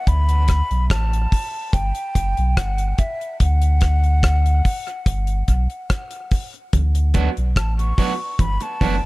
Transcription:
0.07 sub bass D2, flute B5, kick, closed hi-hat
0.29 closed hi-hat
0.48 kick, cross-stick, closed hi-hat
0.71 sub bass B1, closed hi-hat
0.90 sub bass A1, flute A5, kick, cross-stick, closed hi-hat
1.13 closed hi-hat
1.32 kick, open hi-hat
1.73 sub bass G1, flute G5, kick, closed hi-hat
1.95 closed hi-hat
2.15 sub bass F#1, kick, closed hi-hat
2.37 sub bass B1, closed hi-hat
2.57 sub bass G1, flute F#5, kick, cross-stick, closed hi-hat
2.78 closed hi-hat
2.98 flute E5, kick, closed hi-hat
3.21 closed hi-hat
3.40 sub bass D2, flute F#5, kick, closed hi-hat
3.62 closed hi-hat
3.81 kick, cross-stick, closed hi-hat
4.04 closed hi-hat
4.23 kick, cross-stick, closed hi-hat
4.46 closed hi-hat
4.65 kick, open hi-hat
4.88 closed hi-hat
5.06 sub bass G1, kick, closed hi-hat
5.27 closed hi-hat
5.48 sub bass B1, kick, closed hi-hat
5.70 closed hi-hat
5.90 kick, cross-stick, closed hi-hat
6.11 closed hi-hat
6.31 kick, open hi-hat
6.54 closed hi-hat
6.73 sub bass D2, kick, closed hi-hat, low conga
6.95 closed hi-hat
7.14 clean electric guitar F#3 B3 D4 F#4, kick, closed hi-hat, high conga, low conga
7.37 sub bass B1, closed hi-hat
7.56 sub bass A1, flute A5, kick, cross-stick, closed hi-hat
7.78 flute C#6, closed hi-hat
7.98 clean electric guitar F#3 B3 D4 F#4, kick, open hi-hat
8.39 sub bass G1, flute B5, kick, closed hi-hat, low conga
8.60 flute A5, muted clean electric guitar stroke, closed hi-hat
8.81 sub bass F#1, clean electric guitar F#3 B3 D4 F#4, kick, open hi-hat, low conga

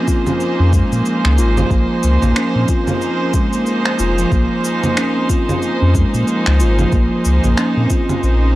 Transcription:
Already playing: string section F3 A#3 D#4 F4 G#4 C5
0.08 steel tongue drum F4, kick, shaker
0.27 low conga, shaker
0.40 shaker
0.59 sub bass F2, steel tongue drum C#4
0.73 steel tongue drum G#3, kick, shaker
0.92 sub bass A#2, steel tongue drum A#3, shaker
1.06 shaker
1.25 sub bass C#2, finger snap
1.38 sub bass G#1, steel tongue drum F4, shaker
1.57 steel tongue drum F3, low conga, shaker
1.71 sub bass A#1, steel tongue drum A#3, kick, shaker
2.03 sub bass C#2, shaker
2.22 sub bass A#1, steel tongue drum A#3, low conga, shaker
2.36 steel tongue drum C#4, finger snap, shaker
2.55 sub bass A#2, steel tongue drum C4
2.68 steel tongue drum F4, kick, shaker
2.87 low conga, shaker
3.01 shaker
3.21 steel tongue drum C#4
3.34 steel tongue drum G#3, kick, shaker
3.53 steel tongue drum A#3, shaker
3.66 shaker
3.85 finger snap
3.99 sub bass F1, steel tongue drum F4, shaker
4.18 steel tongue drum F3, shaker
4.32 sub bass A#1, steel tongue drum A#3, kick, shaker
4.64 shaker
4.83 steel tongue drum A#3, low conga, shaker
4.97 steel tongue drum C#4, finger snap, shaker
5.17 steel tongue drum C4
5.30 steel tongue drum F4, kick, shaker
5.49 low conga, shaker
5.62 shaker
5.82 sub bass F2, steel tongue drum C#4
5.95 steel tongue drum G#3, kick, shaker
6.14 sub bass A#2, steel tongue drum A#3, shaker
6.28 shaker
6.46 sub bass C#2, finger snap
6.60 sub bass G#1, steel tongue drum F4, shaker
6.79 steel tongue drum F3, low conga, shaker
6.92 sub bass A#1, steel tongue drum A#3, kick, shaker
7.25 sub bass C#2, shaker
7.44 sub bass A#1, steel tongue drum A#3, low conga, shaker
7.57 steel tongue drum C#4, finger snap, shaker
7.77 sub bass A#2, steel tongue drum C4
7.90 steel tongue drum F4, kick, shaker
8.09 low conga, shaker
8.23 sub bass A#1, shaker
8.42 steel tongue drum C#4

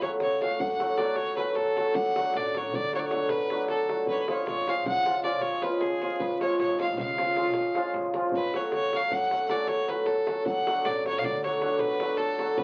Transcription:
0.02 hammered dulcimer F#3 A3 C#4 F#4, fiddle C#5, davul high
0.20 upright bass C#2, fiddle C#5, davul high
0.41 hammered dulcimer F#3 A3 C#4 F#4, fiddle F5, davul high
0.60 upright bass F#2, fiddle F#5, davul low
0.79 hammered dulcimer F#3 A3 C#4 F#4, davul high
0.97 hammered dulcimer F#3 A3 C#4 F#4, fiddle D5, davul high
1.16 upright bass C#2, fiddle C#5, davul high
1.36 hammered dulcimer F#3 A3 C#4 F#4, fiddle B4, davul high
1.55 upright bass F#2, fiddle A4, davul high
1.66 davul high
1.75 hammered dulcimer F#3 A3 C#4 F#4, davul high
1.95 upright bass D2, fiddle F#5, davul low
2.05 davul high
2.15 hammered dulcimer F#3 A3 D4 F#4, davul high
2.34 upright bass A1, fiddle D5, davul high
2.55 hammered dulcimer F#3 A3 D4 F#4, fiddle C#5, davul high
2.74 upright bass D2, fiddle D5, davul low
2.93 hammered dulcimer F#3 A3 D4 F#4, fiddle C#5, davul high
2.99 fiddle D5
3.07 fiddle C#5
3.11 hammered dulcimer F#3 A3 D4 F#4, davul high
3.29 upright bass A1, fiddle B4, davul high
3.50 hammered dulcimer F#3 A3 D4 F#4, davul high
3.67 upright bass D2, fiddle A4, davul high
3.79 davul high
3.88 hammered dulcimer F#3 A3 D4 F#4, davul high
4.07 upright bass C#2, fiddle B4, davul low
4.11 fiddle C#5
4.18 fiddle B4, davul high
4.27 hammered dulcimer F3 G#3 C#4 F4, fiddle C#5, davul high
4.47 upright bass G#1, fiddle C#5, davul high
4.67 hammered dulcimer F3 G#3 C#4 F4, fiddle F5, davul high
4.86 upright bass C#2, fiddle F#5, davul low
5.05 hammered dulcimer F3 G#3 C#4 F4, davul high
5.23 hammered dulcimer F3 G#3 C#4 F4, fiddle D5, davul high
5.41 upright bass G#1, fiddle C#5, davul high
5.62 hammered dulcimer F3 G#3 C#4 F4, fiddle B4, davul high
5.80 upright bass C#2, fiddle G#4, davul high
5.91 davul high
6.01 hammered dulcimer F3 G#3 C#4 F4, davul high
6.20 upright bass C#2, fiddle B4, davul low
6.30 davul high
6.40 hammered dulcimer F3 G#3 C#4 F4, fiddle C#5, davul high
6.50 davul high
6.59 upright bass G#1, fiddle C#5, davul high
6.70 davul high
6.78 hammered dulcimer F3 G#3 C#4 F4, fiddle F5, davul high
6.89 davul high
6.98 upright bass C#2, fiddle F5, davul low
7.08 davul high
7.18 hammered dulcimer F3 G#3 C#4 F4, davul high
7.27 davul high
7.36 hammered dulcimer F3 G#3 C#4 F4, davul high
7.45 davul high
7.54 upright bass G#1, davul high
7.64 davul high
7.74 hammered dulcimer F3 G#3 C#4 F4, davul high
7.85 davul high
7.94 upright bass C#2, davul high, davul low
8.05 davul high
8.13 hammered dulcimer F3 G#3 C#4 F4, davul high
8.32 upright bass F#2, fiddle B4, davul low
8.43 davul high
8.53 hammered dulcimer F#3 A3 C#4 F#4, fiddle C#5, davul high
8.72 upright bass C#2, fiddle C#5, davul high
8.92 hammered dulcimer F#3 A3 C#4 F#4, davul high
8.96 fiddle F5
9.11 upright bass F#2, fiddle F#5, davul low
9.31 hammered dulcimer F#3 A3 C#4 F#4, davul high
9.48 hammered dulcimer F#3 A3 C#4 F#4, fiddle D5, davul high
9.67 upright bass C#2, fiddle C#5, davul high
9.87 hammered dulcimer F#3 A3 C#4 F#4, fiddle B4, davul high
10.06 upright bass F2, fiddle A4, davul high
10.17 davul high
10.27 hammered dulcimer F#3 A3 C#4 F#4, davul high
10.46 upright bass D2, fiddle F#5, davul low
10.57 davul high
10.67 hammered dulcimer F#3 A3 D4 F#4, davul high
10.85 upright bass A1, fiddle D5, davul high
11.05 hammered dulcimer F#3 A3 D4 F#4, fiddle C#5, davul high
11.18 fiddle F5
11.24 upright bass D2, fiddle D5, davul low
11.43 hammered dulcimer F#3 A3 D4 F#4, fiddle C#5, davul high
11.61 hammered dulcimer F#3 A3 D4 F#4, davul high
11.79 upright bass A1, fiddle B4, davul high
12.00 hammered dulcimer F#3 A3 D4 F#4, davul high
12.18 upright bass D2, fiddle A4, davul high
12.29 davul high
12.39 hammered dulcimer F#3 A3 D4 F#4, davul high
12.58 upright bass C#2, fiddle B4, davul low

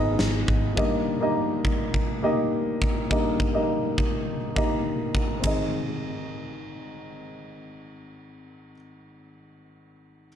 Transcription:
Already playing: picked electric bass G#1, upright piano G#2 B3 D#4 G#4 B4 D#5
0.19 picked electric bass G#1, snare
0.48 picked electric bass G#1, kick
0.76 upright piano G2 A#3 D#4 G4 D#5, kick
1.21 upright piano A#3 D#4 G4 D#5
1.65 kick
1.94 kick
2.23 upright piano A#3 D#4 G4 D#5
2.82 kick
3.10 upright piano G2 A#3 D#4 G4 D#5, kick
3.40 kick
3.53 upright piano A#3 D#4 G4 D#5
3.98 kick
4.56 upright piano A#3 D#4 G4 D#5, kick
5.15 kick
5.40 upright piano G#1 C4 D#4, kick, ride bell
5.44 upright piano G#4 D#5

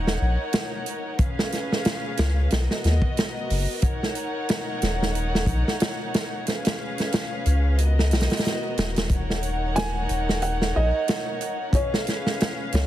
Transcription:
Already playing: sub bass D#1, violin section D#4 A#4 C#5 F#5
0.07 snare
0.21 sub bass A#1
0.53 snare, closed hi-hat
0.86 closed hi-hat
1.19 violin section C#4 G#4 B4 F5, kick, closed hi-hat
1.39 snare
1.52 snare, closed hi-hat
1.72 snare
1.85 snare, closed hi-hat
2.17 sub bass C#2, snare, closed hi-hat
2.51 sub bass B1, violin section B3 F#4 A#4 D#5, snare, closed hi-hat
2.71 snare
2.84 sub bass D#2, snare, closed hi-hat
3.02 kick
3.17 snare, closed hi-hat
3.50 sub bass F#1, open hi-hat
3.82 violin section D#4 C#5 F#5, kick, closed hi-hat
4.03 snare
4.15 closed hi-hat
4.49 snare, closed hi-hat
4.82 sub bass D#1, snare, closed hi-hat
5.02 snare
5.15 closed hi-hat
5.35 snare
5.46 sub bass A#1, kick, closed hi-hat
5.68 snare
5.80 snare, closed hi-hat
6.14 snare, closed hi-hat
6.46 violin section C#4 G#4 B4 F5, snare, closed hi-hat
6.65 snare, closed hi-hat
6.98 snare, closed hi-hat
7.12 snare, closed hi-hat
7.46 sub bass C#2, closed hi-hat
7.78 violin section B3 F#4 A#4 D#5, closed hi-hat
7.99 snare
8.11 sub bass B1, snare, closed hi-hat
8.20 snare, closed hi-hat
8.30 snare, closed hi-hat
8.37 snare, closed hi-hat
8.45 snare, closed hi-hat
8.78 sub bass D#1, snare, closed hi-hat
8.96 snare, closed hi-hat
9.09 violin section D#4 A#4 C#5 F#5, kick, closed hi-hat
9.30 snare
9.43 closed hi-hat
9.76 felt piano G#5, snare, closed hi-hat
10.09 sub bass D#1, closed hi-hat
10.29 snare
10.42 felt piano F#5, closed hi-hat
10.62 snare
10.76 sub bass A#1, felt piano D#5
11.08 snare, closed hi-hat
11.41 closed hi-hat
11.73 violin section C#4 G#4 B4 F5, felt piano C#5, kick, closed hi-hat
11.94 snare
12.07 snare, closed hi-hat
12.27 snare
12.40 snare, closed hi-hat
12.72 sub bass C#2, snare, closed hi-hat

